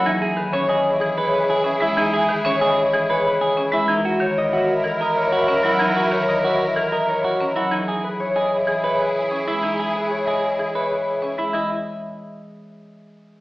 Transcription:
<<
  \new Staff \with { instrumentName = "Harp" } { \time 6/4 \key e \lydian \tempo 4 = 188 << { r1. | r1. | r1. | r1. |
r1. | r1. | dis''8 r1 r4. | } \\ { <dis'' e'' gis''>4 b'8 cis''8 dis''4 gis'8 cis''8 b'4 gis''8 e''8 | gis''4 b'8 cis''8 dis''4 gis'8 cis''8 b'4 gis''8 e''8~ | e''4 cis''8 dis''8 e''4 ais'8 dis''8 cis''4 ais''8 fis''8~ | fis''4 cis''8 dis''8 e''4 ais'8 dis''8 cis''4 ais''8 fis''8 |
r4 b'8 cis''8 dis''4 gis'8 cis''8 b'4 gis''8 e''8~ | e''4 b'8 cis''8 dis''4 gis'8 cis''8 b'4 gis''8 e''8~ | e''1. | } >> }
  \new Staff \with { instrumentName = "Clarinet" } { \time 6/4 \key e \lydian gis'1.~ | gis'1~ gis'4. r8 | ais'1.~ | ais'1~ ais'4. r8 |
gis'1.~ | gis'1~ gis'4. r8 | r1. | }
  \new Staff \with { instrumentName = "Clean electric guitar" } { \time 6/4 \key e \lydian dis'8 gis'8 r8 cis''8 gis'8 r4 b'8 r8 gis'8 r8 e'8 | dis'8 gis'8 r8 cis''8 gis'8 r4 b'8 r8 gis'8 r8 e'8 | dis'8 fis'8 r4 fis'8 r4 ais'8 r8 fis'8 r8 e'8 | dis'8 fis'8 r4 fis'8 r4 ais'8 r8 fis'8 r8 e'8 |
dis'8 gis'8 r4 gis'8 r4 b'8 r4. e'8 | dis'8 gis'8 r4 gis'8 r4 b'8 r4. e'8 | e'8 r1 r4. | }
  \new Staff \with { instrumentName = "String section" } { \time 6/4 \key e \lydian <e' gis'>1.~ | <e' gis'>1~ <e' gis'>4. r8 | <e' ais'>1.~ | <e' ais'>1~ <e' ais'>4. r8 |
<e' gis'>1.~ | <e' gis'>1~ <e' gis'>4. r8 | r1. | }
  \new Staff \with { instrumentName = "Marimba" } { \clef bass \time 6/4 \key e \lydian e8 r8 dis8 cis'8 r4 e8 r4. cis'8 gis8 | e8 r8 dis8 cis'8 r4 e8 r4. cis'8 gis8 | e8 r8 dis8 r4. e8 r4. cis'8 fis8 | e8 r8 dis8 r4. e8 r4. cis'8 fis8 |
e8 r2 r8 e8 r4. cis'8 gis8 | e8 r2 r8 e8 r4. cis'8 gis8 | e8 r1 r4. | }
>>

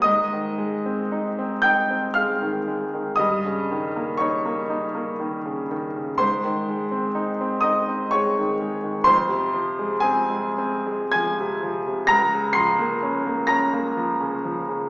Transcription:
<<
  \new Staff \with { instrumentName = "Grand piano" } { \time 3/4 \key aes \major \tempo 4 = 61 <ees'' ees'''>4. <g'' g'''>8 <f'' f'''>4 | <ees'' ees'''>4 <des'' des'''>4. r8 | <c'' c'''>4. <ees'' ees'''>8 <des'' des'''>4 | <c'' c'''>4 <aes' aes''>4 <aes'' aes'''>4 |
<bes'' bes'''>8 <c''' c''''>4 <bes'' bes'''>4. | }
  \new Staff \with { instrumentName = "Grand piano" } { \clef bass \time 3/4 \key aes \major aes,16 ees16 aes16 c'16 ees'16 c'16 ees'16 c'16 aes16 ees16 aes16 ees16 | g,16 des16 ees16 bes16 ees'16 bes16 ees'16 bes16 ees16 des16 ees16 des16 | aes,16 ees16 aes16 c'16 ees'16 c'16 ees'16 c'16 aes16 ees16 aes16 ees16 | f,16 c16 f16 aes16 c'16 aes16 c'16 aes16 f16 c16 f16 c16 |
des,16 des16 f16 bes16 des'16 bes16 des'16 bes16 f16 des16 f16 des16 | }
>>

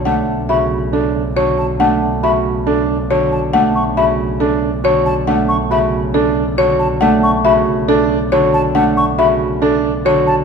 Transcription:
<<
  \new Staff \with { instrumentName = "Flute" } { \time 4/4 \key b \minor \tempo 4 = 138 fis''8 r8 b''8 r2 a''8 | fis''8 r8 b''8 r2 a''8 | fis''8 cis'''8 b''8 r2 a''8 | fis''8 cis'''8 b''8 r2 a''8 |
fis''8 cis'''8 b''8 r2 a''8 | fis''8 cis'''8 b''8 r2 a''8 | }
  \new Staff \with { instrumentName = "Marimba" } { \time 4/4 \key b \minor fis''8 r8 e''8 r8 a'8 r8 cis''8 r8 | fis''8 r8 e''8 r8 a'8 r8 cis''8 r8 | fis''8 r8 e''8 r8 a'8 r8 cis''8 r8 | fis''8 r8 e''8 r8 a'8 r8 cis''8 r8 |
fis''8 r8 e''8 r8 a'8 r8 cis''8 r8 | fis''8 r8 e''8 r8 a'8 r8 cis''8 r8 | }
  \new Staff \with { instrumentName = "Grand piano" } { \time 4/4 \key b \minor d'8 r8 fis'8 r8 d'8 r8 fis'8 r8 | d'8 r8 fis'8 r8 d'8 r8 fis'8 r8 | d'8 r8 fis'8 r8 d'8 r8 fis'8 r8 | d'8 r8 fis'8 r8 d'8 r8 fis'8 r8 |
d'8 r8 fis'8 r8 d'8 r8 fis'8 r8 | d'8 r8 fis'8 r8 d'8 r8 fis'8 r8 | }
  \new Staff \with { instrumentName = "Harp" } { \clef bass \time 4/4 \key b \minor <d a>4 cis2 d4 | a4 cis2 d4 | a4 cis2 d4 | a4 cis2 d4 |
a4 cis2 d4 | a4 cis2 d4 | }
  \new Staff \with { instrumentName = "Double bass" } { \clef bass \time 4/4 \key b \minor b,,1~ | b,,1~ | b,,1~ | b,,1~ |
b,,1~ | b,,1 | }
>>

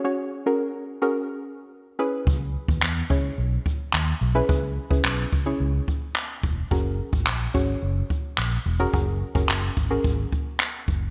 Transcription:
<<
  \new Staff \with { instrumentName = "Synth pluck" } { \time 4/4 \key fis \mixolydian \tempo 4 = 108 <cis' fis' gis' cis''>8 r16 <cis' fis' gis' ais'>8. r16 <cis' fis' gis' ais'>4.~ <cis' fis' gis' ais'>16 <cis' e' gis' b'>8~ | <cis' e' gis' b'>4~ <cis' e' gis' b'>16 r16 <cis' e' gis' cis''>4.~ <cis' e' gis' cis''>16 r8 <cis' e' gis' b'>16 | <cis' e' gis' b'>8 r16 <cis' e' gis' b'>8. r16 <cis' e' gis' cis''>4.~ <cis' e' gis' cis''>16 r8 | <cis' fis' gis' ais'>4~ <cis' fis' gis' ais'>16 r16 <cis' fis' gis' cis''>4.~ <cis' fis' gis' cis''>16 r8 <cis' fis' gis' ais'>16 |
<cis' fis' gis' ais'>8 r16 <cis' fis' gis' ais'>8. r16 <cis' fis' gis' ais'>4.~ <cis' fis' gis' ais'>16 r8 | }
  \new Staff \with { instrumentName = "Fingered electric bass" } { \clef bass \time 4/4 \key fis \mixolydian r1 | cis,8. dis,16 e,8 cis,8 b,,8 r8 dis,8 b,,8 | cis,8. cis,16 b,,8 cis,8 cis,8 r4 e,,8 | fis,,8. gis,,16 ais,,8 gis,,8 fis,,8 r8 ais,,8 e,,8 |
fis,,8. fis,,16 fis,,8 gis,,8 gis,,8 r4 fis,,8 | }
  \new DrumStaff \with { instrumentName = "Drums" } \drummode { \time 4/4 r4 r4 r4 r4 | bd8. bd16 hc8 bd8 r8 bd8 hc4 | bd8. bd16 hc8 bd8 r8 bd8 hc8 bd8 | bd8. bd16 hc8 bd8 r8 bd8 hc4 |
bd8. bd16 hc8 bd8 bd8 bd8 hc8 bd8 | }
>>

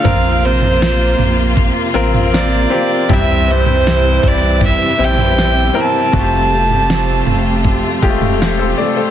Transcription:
<<
  \new Staff \with { instrumentName = "Violin" } { \time 4/4 \key f \major \tempo 4 = 79 f''8 c''4. r4 d''4 | e''8 c''4 d''8 e''8 g''4 a''8~ | a''2~ a''8 r4. | }
  \new Staff \with { instrumentName = "Grand piano" } { \time 4/4 \key f \major << { r1 | g,4. r2 r8 | c4. r4. r16 <a' c''>16 d''16 <a' c''>16 | } \\ { <c' f' bes'>2 r8 <c' f' bes'>4 <c' f' g'>8 | <c' e' g'>2 r8 <c' e' g'>4 <c' e' bes'>8 | <a f' ges' g'>2 r8 <aes a f' g'>4 r8 | } >> }
  \new Staff \with { instrumentName = "Steel-string acoustic guitar" } { \time 4/4 \key f \major <bes c' f' bes'>8 <c' f' bes'>8 <bes c' f' bes'>4. <c' f' bes'>8 <bes c' f' bes'>8 <c' f' bes'>8 | <c g c' e' c''>8 <c' e' c''>8 <g c' e' c''>4. <c' e' c''>8 <g c' e' c''>8 <c' e' c''>8 | <f c' g' a'>8 <c' g' a'>8 <f c' g' a'>4. <c' g' a'>8 <f c' g' a'>8 <c' g' a'>8 | }
  \new Staff \with { instrumentName = "String section" } { \time 4/4 \key f \major << { <f bes f'>1 | <e g e'>1 | <a f'>1 | } \\ { c1~ | c1~ | c1 | } >> }
  \new Staff \with { instrumentName = "Sub bass" } { \clef bass \time 4/4 \key f \major bes,,4. bes,,8. r16 a,,4 r8 | c,4. c,8. r16 bes,,4 r8 | f,,4. f,,8. r16 e,,4 r8 | }
  \new DrumStaff \with { instrumentName = "Drums" } \drummode { \time 4/4 <bd tomfh>8. tomfh16 sn8 tomfh8 <bd tomfh>8. tomfh16 sn4 | <bd tomfh>8. tomfh16 sn8 <bd tomfh>8 <bd tomfh>8. tomfh16 sn4 | <bd tomfh>8. tomfh16 sn8 tomfh8 <bd tomfh>8 bd16 tomfh16 sn4 | }
>>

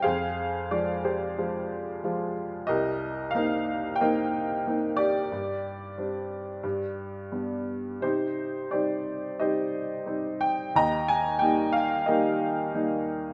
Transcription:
<<
  \new Staff \with { instrumentName = "Upright piano" } { \time 4/4 \key c \minor \tempo 4 = 91 << { f''4 d''8 c''2 r8 | ees''4 f''4 g''4 r8 d''8~ | d''2~ d''8 r4. | c''4 d''4 ees''4. g''8 |
bes''8 aes''8 g''8 f''8 ees''4. r8 | } \\ { <aes' c''>4. <g' aes'>2 r8 | <g' bes'>4 bes'4 <bes' ees''>4. g'8~ | g'2~ g'8 r4. | <ees' g'>4 g'4 <g' c''>2 |
<ees'' g''>2 <g' bes'>2 | } >> }
  \new Staff \with { instrumentName = "Upright piano" } { \time 4/4 \key c \minor f,4 <f aes f'>4 <f aes f'>4 <f aes f'>4 | c,4 <bes c' ees'>4 <bes c' ees'>4 <bes c' ees'>4 | g,4 <g c' d'>4 g,4 <g b d'>4 | c4 <g c' ees'>4 <g c' ees'>4 <g c' ees'>4 |
ees,4 <g bes ees'>4 <g bes ees'>4 <g bes ees'>4 | }
>>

